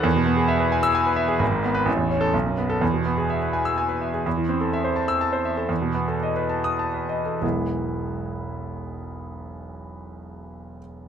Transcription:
\new Staff \with { instrumentName = "Grand piano" } { \time 3/4 \key e \major \tempo 4 = 124 << { r4. r16 e'''8 r8. | r8. b'16 r8. a'16 r8. a'16 | r4. r16 e'''8 r8. | r4. r16 e'''8 r8. |
r4. r16 dis'''8 r8. | <e,, b,, e gis b e'>2.~ | <e,, b,, e gis b e'>2. | } \\ { e,16 b,16 b16 gis'16 e''16 b'16 gis''8 gis''16 b'16 e''16 gis'16 | gis,,16 gis,16 b8 a,,16 e,16 cis'8 b,,16 fis,16 b8 | e,16 b,16 b16 gis'16 e''16 b'16 gis''8 gis''16 b'16 e''16 gis'16 | e,16 e16 c'16 a'16 e''16 c''16 a''8 a''16 c''16 e''16 a'16 |
e,16 b,16 b16 a'16 dis''16 b'16 a''8 a''16 b'16 dis''16 a'16 | r2. | r2. | } >> }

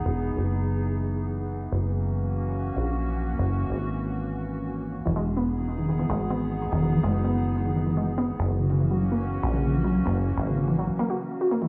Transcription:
<<
  \new Staff \with { instrumentName = "Ambient pad" } { \time 4/4 \key fis \mixolydian \tempo 4 = 144 << { <b dis' gis'>1 | <ais cis' fis'>1~ | <ais cis' fis'>1 | <b dis' gis'>1~ |
<b dis' gis'>1 | <ais cis' fis'>1~ | <ais cis' fis'>1 | } \\ { e1~ | e1~ | e1~ | e1~ |
e1 | e1~ | e1 | } >> }
  \new Staff \with { instrumentName = "Synth pluck" } { \clef bass \time 4/4 \key fis \mixolydian r1 | r1 | r1 | e16 gis16 r16 b16 r8. dis16 dis16 e16 gis16 r16 b16 r8. |
dis16 dis16 e16 gis16 r16 b16 r8. dis16 dis16 e16 gis16 r16 b16 r16 | r8 cis16 cis16 e16 fis16 r16 ais16 r8. cis16 cis16 e16 fis16 r16 | ais16 r8. cis16 cis16 e16 fis16 r16 ais16 fis'16 r8 fis'16 ais16 e16 | }
  \new Staff \with { instrumentName = "Acid bass" } { \clef bass \time 4/4 \key fis \mixolydian e,,8 r16 fis,,2. r16 | fis,,2~ fis,,16 r16 ais,,4~ ais,,16 r16 | fis,,8 r16 gis,,2. r16 | e,,2~ e,,16 r16 gis,,4~ gis,,16 r16 |
e,,8 r16 fis,,2. r16 | fis,,2~ fis,,16 r16 ais,,4~ ais,,16 r16 | fis,,8 r16 gis,,4~ gis,,16 r2 | }
>>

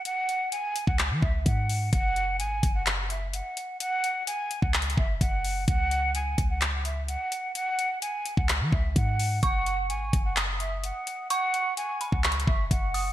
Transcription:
<<
  \new Staff \with { instrumentName = "Synth bell" } { \time 4/4 \key fis \dorian \tempo 4 = 128 r1 | r1 | r1 | r1 |
r1 | cis'''2 dis'''2 | cis'''4. b''8 cis'''4. dis'''8 | }
  \new Staff \with { instrumentName = "Flute" } { \time 4/4 \key fis \dorian fis''4 gis''8. fis''16 r8 e''8 fis''4 | fis''4 gis''8. fis''16 r8 e''8 fis''4 | fis''4 gis''8. fis''16 r8 e''8 fis''4 | fis''4 gis''8. fis''16 r8 e''8 fis''4 |
fis''4 gis''8. fis''16 r8 e''8 fis''4 | fis''4 gis''8. fis''16 r8 e''8 fis''4 | fis''4 gis''8. fis''16 r8 e''8 fis''4 | }
  \new Staff \with { instrumentName = "808-style bass" } { \clef bass \time 4/4 \key fis \dorian r4. r16 cis,8 e16 cis,8 gis,4 | fis,,4 gis,,8 fis,,4.~ fis,,16 r8. | r4. r16 cis,8. fis,,8 fis,,4 | cis,4. cis,4.~ cis,16 r8. |
r4. r16 cis,8 e16 cis,8 gis,4 | fis,,4 gis,,8 fis,,4.~ fis,,16 r8. | r4. r16 cis,8. fis,,8 fis,,4 | }
  \new DrumStaff \with { instrumentName = "Drums" } \drummode { \time 4/4 hh8 hh8 hh8 hh16 bd16 <hc hh>8 bd8 <hh bd>8 hho8 | <hh bd>8 hh8 hh8 <hh bd>8 <hc hh>8 hh8 hh8 hh8 | hh8 hh8 hh8 hh16 bd16 \tuplet 3/2 { <hc hh>16 hh16 hh16 bd16 r16 r16 } <hh bd>8 hho8 | <hh bd>8 hh8 hh8 <hh bd>8 <hc hh>8 hh8 hh8 hh8 |
hh8 hh8 hh8 hh16 bd16 <hc hh>8 bd8 <hh bd>8 hho8 | <hh bd>8 hh8 hh8 <hh bd>8 <hc hh>8 hh8 hh8 hh8 | hh8 hh8 hh8 hh16 bd16 \tuplet 3/2 { <hc hh>16 hh16 hh16 bd16 r16 r16 } <hh bd>8 hho8 | }
>>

